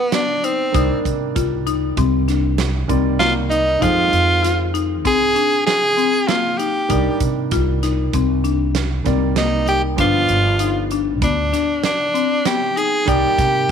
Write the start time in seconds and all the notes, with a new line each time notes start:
Already playing: F3 G3 B3 D4
0.12 B3 D4, snare, closed hi-hat
0.44 C4 D#4, closed hi-hat
0.72 C2 D#3 G3 A#3 D4 D#4, kick, closed hi-hat
1.05 C3, kick, closed hi-hat
1.36 C2 F4, kick, closed hi-hat
1.67 D#4, closed hi-hat
1.97 C2 C4, kick, closed hi-hat
2.28 D4, snare, closed hi-hat
2.58 snare, closed hi-hat
2.88 C2 D#3 G3 A#3 C4 D5, kick, closed hi-hat
3.19 A#3 F4, snare, closed hi-hat
3.49 D#4, closed hi-hat
3.79 F2 D#3 F3 G#3 C4 D#4 F4, kick, closed hi-hat
4.12 F2, closed hi-hat
4.43 F4, snare, closed hi-hat
4.74 D#4, closed hi-hat
5.05 C2 C4 G#4, kick, closed hi-hat
5.35 D4, closed hi-hat
5.66 G#4, snare, closed hi-hat
5.97 C4, closed hi-hat
6.27 A#3 F4, snare, closed hi-hat
6.58 D#4 G4, closed hi-hat
6.89 C2 D#3 G3 A#3 D4 D#4, kick, closed hi-hat
7.20 C3, kick, closed hi-hat
7.51 C2 F4, kick, snare, closed hi-hat
7.83 D#4, snare, closed hi-hat
8.13 C2 C4, kick, closed hi-hat
8.44 D4, closed hi-hat
8.75 snare, closed hi-hat
9.04 C2 D#3 G3 A#3 C4 D5, kick, snare, closed hi-hat
9.36 A#3 D#4, snare, closed hi-hat
9.68 D#4 G4, closed hi-hat
9.96 G1 F3 G3 B3 D4 F4, kick, closed hi-hat
10.29 G1, closed hi-hat
10.59 D#4, closed hi-hat
10.91 D4, closed hi-hat
11.22 D2 B3 D4, kick, closed hi-hat
11.53 D4, snare, closed hi-hat
11.84 D4, snare, closed hi-hat
12.14 C4, closed hi-hat
12.45 B3 G4, snare, closed hi-hat
12.77 D#4 G#4, closed hi-hat
13.05 C2 D#3 G3 A#3 D#4 G4 D5, kick, closed hi-hat
13.38 C3, kick, snare, closed hi-hat